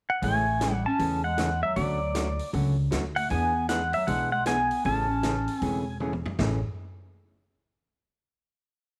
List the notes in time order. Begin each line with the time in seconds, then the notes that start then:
0.10 F#5
0.22 A1 C#3 E3 A3 C#4 G#4 G#5, open hi-hat
0.60 C#3 E3 A3 C#4 G#4, snare, closed hi-hat
0.69 G3
0.74 F#5
0.86 C#4 A5
0.99 E2 C#3 E3 A3 C#4 G#4, open hi-hat
1.24 G#3 F#5
1.37 C#3 E3 A3 C#4 G#4, snare, closed hi-hat
1.63 F#3 E5
1.76 D2 D3 F#3 A3 C#4 F#4 D5, open hi-hat
2.15 D3 F#3 A3 C#4 F#4, snare, closed hi-hat
2.39 open hi-hat
2.53 C#2 D3 F#3 A3 C#4 F#4, open hi-hat
2.91 D2 D3 F#3 A3 C#4 F#4, snare, closed hi-hat
3.16 A3 F#5, open hi-hat
3.30 E2 E3 B3 D4 G#4 G#5, open hi-hat
3.69 E3 G#3 B3 D4 G#4 F#5, snare, closed hi-hat
3.93 F#3 E5, open hi-hat
4.07 B1 E3 G#3 B3 D4 G#4 F#5, open hi-hat
4.32 G#3 F#5
4.46 E3 B3 D4 G#4 G#5, snare, closed hi-hat
4.71 open hi-hat
4.84 A1 C#3 E3 A3 C#4 G#4 A5, open hi-hat
5.23 C#3 E3 A3 C#4 G#4, snare, closed hi-hat
5.48 open hi-hat
5.58 E1 C#3 C4 G#5, open hi-hat
5.62 E3 A3 C#4 G#4
6.00 C#3 E3 A3 C#4 G#4, high tom
6.13 high tom
6.26 floor tom
6.39 A1 A2 C#3 E3 A3 C#4 G#4, snare, floor tom